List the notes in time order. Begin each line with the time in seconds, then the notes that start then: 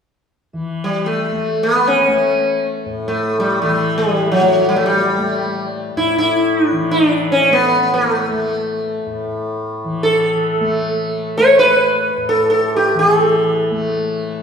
0.53 E3
0.84 G3
1.06 A3
1.32 A3
1.63 B3
1.87 C#4
2.07 A3
2.85 A2
3.08 A3
3.40 G3
3.62 E3 A3
3.98 G3
4.32 F#3
4.41 A3
4.69 G3
4.76 A3
4.86 G3
5.18 A3
5.96 A2 E4
6.18 E4
6.67 D4
6.72 E3
6.91 D4
7.32 C#4
7.50 A3 B3
7.94 A#3
8.13 A3
8.28 A3
9.06 A2
9.84 E3
10.03 A4
10.61 A3
11.38 A3 C#5
11.59 B4
12.17 A2
12.29 A4
12.50 A4
12.76 G4
12.94 E3
12.99 G#4
13.18 A4
13.71 A3